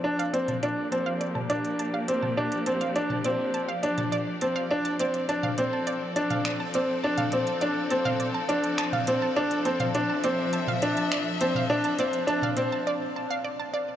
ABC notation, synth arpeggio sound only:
X:1
M:4/4
L:1/16
Q:1/4=103
K:Dm
V:1 name="Synth arpeggio sound"
a f d a d z a f d a d z a f d a | d z a f d a d z a f d a d z a f | d a d z a f d a d z a f d a d z | a f d a d z a f d a d z a f d a |
d z a f d a d z a f d a d z a f | d a d z a f d a d z a f d a d z |]